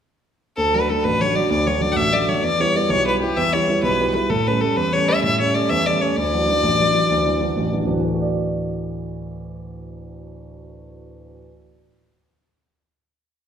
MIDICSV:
0, 0, Header, 1, 3, 480
1, 0, Start_track
1, 0, Key_signature, 2, "major"
1, 0, Tempo, 309438
1, 890, Time_signature, 12, 3, 24, 8
1, 20902, End_track
2, 0, Start_track
2, 0, Title_t, "Fiddle"
2, 0, Program_c, 0, 110
2, 884, Note_on_c, 0, 69, 89
2, 1158, Note_on_c, 0, 71, 78
2, 1181, Note_off_c, 0, 69, 0
2, 1387, Note_on_c, 0, 69, 75
2, 1410, Note_off_c, 0, 71, 0
2, 1616, Note_on_c, 0, 71, 92
2, 1639, Note_off_c, 0, 69, 0
2, 1878, Note_on_c, 0, 73, 85
2, 1901, Note_off_c, 0, 71, 0
2, 2100, Note_on_c, 0, 74, 74
2, 2123, Note_off_c, 0, 73, 0
2, 2327, Note_off_c, 0, 74, 0
2, 2336, Note_on_c, 0, 74, 83
2, 2588, Note_on_c, 0, 73, 76
2, 2611, Note_off_c, 0, 74, 0
2, 2817, Note_on_c, 0, 74, 85
2, 2840, Note_off_c, 0, 73, 0
2, 2979, Note_on_c, 0, 78, 69
2, 3003, Note_off_c, 0, 74, 0
2, 3047, Note_on_c, 0, 76, 95
2, 3071, Note_off_c, 0, 78, 0
2, 3308, Note_on_c, 0, 74, 83
2, 3331, Note_off_c, 0, 76, 0
2, 3548, Note_on_c, 0, 73, 73
2, 3571, Note_off_c, 0, 74, 0
2, 3784, Note_on_c, 0, 74, 94
2, 3807, Note_off_c, 0, 73, 0
2, 4041, Note_on_c, 0, 73, 89
2, 4064, Note_off_c, 0, 74, 0
2, 4281, Note_on_c, 0, 74, 84
2, 4304, Note_off_c, 0, 73, 0
2, 4503, Note_on_c, 0, 73, 100
2, 4527, Note_off_c, 0, 74, 0
2, 4753, Note_off_c, 0, 73, 0
2, 4762, Note_on_c, 0, 71, 82
2, 4976, Note_off_c, 0, 71, 0
2, 4989, Note_on_c, 0, 67, 72
2, 5221, Note_on_c, 0, 76, 87
2, 5245, Note_off_c, 0, 67, 0
2, 5478, Note_on_c, 0, 73, 80
2, 5501, Note_off_c, 0, 76, 0
2, 5935, Note_off_c, 0, 73, 0
2, 5944, Note_on_c, 0, 71, 91
2, 6401, Note_off_c, 0, 71, 0
2, 6444, Note_on_c, 0, 71, 76
2, 6669, Note_on_c, 0, 69, 89
2, 6692, Note_off_c, 0, 71, 0
2, 6943, Note_on_c, 0, 71, 77
2, 6966, Note_off_c, 0, 69, 0
2, 7152, Note_on_c, 0, 69, 73
2, 7175, Note_off_c, 0, 71, 0
2, 7388, Note_on_c, 0, 71, 88
2, 7411, Note_off_c, 0, 69, 0
2, 7646, Note_on_c, 0, 73, 86
2, 7669, Note_off_c, 0, 71, 0
2, 7886, Note_on_c, 0, 76, 75
2, 7909, Note_off_c, 0, 73, 0
2, 8115, Note_off_c, 0, 76, 0
2, 8127, Note_on_c, 0, 76, 94
2, 8362, Note_off_c, 0, 76, 0
2, 8377, Note_on_c, 0, 73, 86
2, 8603, Note_on_c, 0, 74, 76
2, 8627, Note_off_c, 0, 73, 0
2, 8835, Note_on_c, 0, 76, 92
2, 8859, Note_off_c, 0, 74, 0
2, 9093, Note_on_c, 0, 74, 81
2, 9117, Note_off_c, 0, 76, 0
2, 9325, Note_on_c, 0, 73, 68
2, 9349, Note_off_c, 0, 74, 0
2, 9553, Note_on_c, 0, 74, 104
2, 9576, Note_off_c, 0, 73, 0
2, 11976, Note_off_c, 0, 74, 0
2, 20902, End_track
3, 0, Start_track
3, 0, Title_t, "Grand piano"
3, 0, Program_c, 1, 0
3, 889, Note_on_c, 1, 38, 56
3, 1144, Note_on_c, 1, 54, 46
3, 1147, Note_on_c, 1, 57, 38
3, 1162, Note_on_c, 1, 62, 48
3, 1354, Note_off_c, 1, 54, 0
3, 1361, Note_off_c, 1, 57, 0
3, 1365, Note_off_c, 1, 38, 0
3, 1365, Note_off_c, 1, 62, 0
3, 1377, Note_on_c, 1, 54, 37
3, 1384, Note_on_c, 1, 57, 39
3, 1388, Note_on_c, 1, 62, 47
3, 1618, Note_on_c, 1, 33, 55
3, 1770, Note_off_c, 1, 54, 0
3, 1774, Note_off_c, 1, 57, 0
3, 1777, Note_off_c, 1, 62, 0
3, 1872, Note_on_c, 1, 54, 38
3, 1884, Note_on_c, 1, 57, 35
3, 1889, Note_on_c, 1, 62, 37
3, 2069, Note_off_c, 1, 54, 0
3, 2076, Note_off_c, 1, 57, 0
3, 2079, Note_off_c, 1, 62, 0
3, 2090, Note_off_c, 1, 33, 0
3, 2092, Note_on_c, 1, 54, 44
3, 2099, Note_on_c, 1, 57, 36
3, 2103, Note_on_c, 1, 62, 47
3, 2331, Note_on_c, 1, 38, 66
3, 2488, Note_off_c, 1, 54, 0
3, 2492, Note_off_c, 1, 57, 0
3, 2494, Note_off_c, 1, 62, 0
3, 2580, Note_on_c, 1, 54, 41
3, 2585, Note_on_c, 1, 57, 39
3, 2597, Note_on_c, 1, 62, 46
3, 2786, Note_off_c, 1, 54, 0
3, 2791, Note_off_c, 1, 57, 0
3, 2800, Note_off_c, 1, 62, 0
3, 2807, Note_off_c, 1, 38, 0
3, 2809, Note_on_c, 1, 54, 47
3, 2814, Note_on_c, 1, 57, 42
3, 2823, Note_on_c, 1, 62, 49
3, 3036, Note_on_c, 1, 33, 54
3, 3207, Note_off_c, 1, 54, 0
3, 3210, Note_off_c, 1, 57, 0
3, 3215, Note_off_c, 1, 62, 0
3, 3284, Note_on_c, 1, 54, 43
3, 3294, Note_on_c, 1, 57, 43
3, 3301, Note_on_c, 1, 62, 41
3, 3506, Note_off_c, 1, 54, 0
3, 3509, Note_off_c, 1, 57, 0
3, 3519, Note_off_c, 1, 62, 0
3, 3521, Note_off_c, 1, 33, 0
3, 3529, Note_on_c, 1, 54, 46
3, 3532, Note_on_c, 1, 57, 41
3, 3542, Note_on_c, 1, 62, 50
3, 3721, Note_off_c, 1, 54, 0
3, 3722, Note_off_c, 1, 57, 0
3, 3729, Note_off_c, 1, 62, 0
3, 3764, Note_on_c, 1, 40, 53
3, 4021, Note_on_c, 1, 55, 50
3, 4027, Note_on_c, 1, 59, 43
3, 4035, Note_on_c, 1, 64, 50
3, 4234, Note_off_c, 1, 55, 0
3, 4243, Note_off_c, 1, 59, 0
3, 4246, Note_off_c, 1, 40, 0
3, 4246, Note_off_c, 1, 64, 0
3, 4257, Note_on_c, 1, 55, 40
3, 4266, Note_on_c, 1, 59, 41
3, 4269, Note_on_c, 1, 64, 45
3, 4488, Note_on_c, 1, 35, 62
3, 4654, Note_off_c, 1, 55, 0
3, 4659, Note_off_c, 1, 59, 0
3, 4661, Note_off_c, 1, 64, 0
3, 4744, Note_on_c, 1, 55, 36
3, 4753, Note_on_c, 1, 59, 33
3, 4754, Note_on_c, 1, 64, 41
3, 4959, Note_off_c, 1, 55, 0
3, 4964, Note_off_c, 1, 59, 0
3, 4970, Note_off_c, 1, 35, 0
3, 4973, Note_off_c, 1, 64, 0
3, 4982, Note_on_c, 1, 55, 40
3, 4987, Note_on_c, 1, 59, 38
3, 4997, Note_on_c, 1, 64, 45
3, 5218, Note_on_c, 1, 40, 63
3, 5378, Note_off_c, 1, 55, 0
3, 5381, Note_off_c, 1, 59, 0
3, 5387, Note_off_c, 1, 64, 0
3, 5478, Note_on_c, 1, 55, 46
3, 5489, Note_on_c, 1, 59, 40
3, 5492, Note_on_c, 1, 64, 41
3, 5691, Note_off_c, 1, 55, 0
3, 5696, Note_off_c, 1, 40, 0
3, 5698, Note_off_c, 1, 59, 0
3, 5702, Note_off_c, 1, 64, 0
3, 5714, Note_on_c, 1, 55, 45
3, 5722, Note_on_c, 1, 59, 37
3, 5725, Note_on_c, 1, 64, 51
3, 5936, Note_on_c, 1, 35, 59
3, 6106, Note_off_c, 1, 55, 0
3, 6111, Note_off_c, 1, 59, 0
3, 6113, Note_off_c, 1, 64, 0
3, 6195, Note_on_c, 1, 55, 48
3, 6206, Note_on_c, 1, 64, 44
3, 6209, Note_on_c, 1, 59, 37
3, 6404, Note_off_c, 1, 55, 0
3, 6408, Note_off_c, 1, 59, 0
3, 6416, Note_off_c, 1, 64, 0
3, 6417, Note_off_c, 1, 35, 0
3, 6427, Note_on_c, 1, 55, 47
3, 6431, Note_on_c, 1, 59, 41
3, 6439, Note_on_c, 1, 64, 48
3, 6616, Note_off_c, 1, 55, 0
3, 6619, Note_off_c, 1, 59, 0
3, 6624, Note_off_c, 1, 64, 0
3, 6662, Note_on_c, 1, 45, 56
3, 6924, Note_on_c, 1, 55, 43
3, 6930, Note_on_c, 1, 57, 39
3, 6930, Note_on_c, 1, 61, 48
3, 7133, Note_off_c, 1, 55, 0
3, 7139, Note_off_c, 1, 61, 0
3, 7140, Note_off_c, 1, 57, 0
3, 7141, Note_off_c, 1, 45, 0
3, 7156, Note_on_c, 1, 55, 46
3, 7163, Note_on_c, 1, 57, 37
3, 7163, Note_on_c, 1, 61, 42
3, 7386, Note_on_c, 1, 40, 57
3, 7550, Note_off_c, 1, 55, 0
3, 7554, Note_off_c, 1, 57, 0
3, 7554, Note_off_c, 1, 61, 0
3, 7635, Note_on_c, 1, 55, 35
3, 7643, Note_on_c, 1, 57, 34
3, 7647, Note_on_c, 1, 61, 43
3, 7854, Note_off_c, 1, 55, 0
3, 7863, Note_off_c, 1, 57, 0
3, 7864, Note_off_c, 1, 40, 0
3, 7869, Note_off_c, 1, 61, 0
3, 7878, Note_on_c, 1, 55, 42
3, 7886, Note_on_c, 1, 57, 39
3, 7892, Note_on_c, 1, 61, 44
3, 8112, Note_on_c, 1, 45, 57
3, 8272, Note_off_c, 1, 55, 0
3, 8277, Note_off_c, 1, 57, 0
3, 8281, Note_off_c, 1, 61, 0
3, 8361, Note_on_c, 1, 55, 40
3, 8371, Note_on_c, 1, 57, 35
3, 8371, Note_on_c, 1, 61, 52
3, 8585, Note_off_c, 1, 55, 0
3, 8589, Note_off_c, 1, 45, 0
3, 8595, Note_off_c, 1, 57, 0
3, 8602, Note_off_c, 1, 61, 0
3, 8609, Note_on_c, 1, 55, 45
3, 8618, Note_on_c, 1, 57, 46
3, 8625, Note_on_c, 1, 61, 51
3, 8838, Note_on_c, 1, 40, 59
3, 8999, Note_off_c, 1, 55, 0
3, 9005, Note_off_c, 1, 57, 0
3, 9009, Note_off_c, 1, 61, 0
3, 9092, Note_on_c, 1, 55, 45
3, 9103, Note_on_c, 1, 57, 43
3, 9106, Note_on_c, 1, 61, 50
3, 9300, Note_off_c, 1, 55, 0
3, 9303, Note_off_c, 1, 57, 0
3, 9313, Note_off_c, 1, 40, 0
3, 9315, Note_off_c, 1, 61, 0
3, 9323, Note_on_c, 1, 55, 39
3, 9326, Note_on_c, 1, 57, 41
3, 9339, Note_on_c, 1, 61, 53
3, 9510, Note_off_c, 1, 55, 0
3, 9511, Note_off_c, 1, 57, 0
3, 9519, Note_off_c, 1, 61, 0
3, 9562, Note_on_c, 1, 38, 64
3, 9821, Note_on_c, 1, 52, 41
3, 9826, Note_on_c, 1, 54, 41
3, 9834, Note_on_c, 1, 62, 49
3, 10025, Note_off_c, 1, 52, 0
3, 10030, Note_off_c, 1, 54, 0
3, 10035, Note_off_c, 1, 38, 0
3, 10041, Note_off_c, 1, 62, 0
3, 10048, Note_on_c, 1, 52, 45
3, 10053, Note_on_c, 1, 54, 43
3, 10064, Note_on_c, 1, 62, 47
3, 10283, Note_on_c, 1, 33, 60
3, 10440, Note_off_c, 1, 52, 0
3, 10443, Note_off_c, 1, 54, 0
3, 10449, Note_off_c, 1, 62, 0
3, 10542, Note_on_c, 1, 52, 34
3, 10547, Note_on_c, 1, 54, 30
3, 10554, Note_on_c, 1, 62, 47
3, 10742, Note_off_c, 1, 52, 0
3, 10748, Note_off_c, 1, 54, 0
3, 10753, Note_off_c, 1, 62, 0
3, 10756, Note_off_c, 1, 33, 0
3, 10765, Note_on_c, 1, 52, 40
3, 10772, Note_on_c, 1, 54, 37
3, 10777, Note_on_c, 1, 62, 39
3, 11015, Note_on_c, 1, 38, 64
3, 11159, Note_off_c, 1, 52, 0
3, 11162, Note_off_c, 1, 54, 0
3, 11165, Note_off_c, 1, 62, 0
3, 11256, Note_on_c, 1, 52, 45
3, 11265, Note_on_c, 1, 54, 36
3, 11268, Note_on_c, 1, 62, 40
3, 11468, Note_off_c, 1, 54, 0
3, 11471, Note_off_c, 1, 52, 0
3, 11478, Note_off_c, 1, 62, 0
3, 11482, Note_off_c, 1, 38, 0
3, 11491, Note_on_c, 1, 54, 39
3, 11495, Note_on_c, 1, 52, 42
3, 11501, Note_on_c, 1, 62, 49
3, 11727, Note_on_c, 1, 33, 58
3, 11882, Note_off_c, 1, 54, 0
3, 11884, Note_off_c, 1, 52, 0
3, 11888, Note_off_c, 1, 62, 0
3, 11984, Note_on_c, 1, 52, 41
3, 11987, Note_on_c, 1, 54, 36
3, 11989, Note_on_c, 1, 62, 41
3, 12143, Note_on_c, 1, 38, 38
3, 12175, Note_off_c, 1, 52, 0
3, 12188, Note_off_c, 1, 54, 0
3, 12189, Note_off_c, 1, 62, 0
3, 12198, Note_off_c, 1, 33, 0
3, 12198, Note_on_c, 1, 52, 47
3, 12211, Note_on_c, 1, 54, 37
3, 12212, Note_on_c, 1, 62, 51
3, 12267, Note_on_c, 1, 45, 35
3, 12363, Note_off_c, 1, 52, 0
3, 12386, Note_on_c, 1, 52, 46
3, 12395, Note_off_c, 1, 54, 0
3, 12396, Note_off_c, 1, 62, 0
3, 12496, Note_on_c, 1, 57, 40
3, 12612, Note_on_c, 1, 66, 41
3, 12734, Note_on_c, 1, 74, 48
3, 17588, Note_off_c, 1, 38, 0
3, 17712, Note_off_c, 1, 45, 0
3, 17832, Note_off_c, 1, 52, 0
3, 17941, Note_off_c, 1, 57, 0
3, 18057, Note_off_c, 1, 66, 0
3, 18179, Note_off_c, 1, 74, 0
3, 20902, End_track
0, 0, End_of_file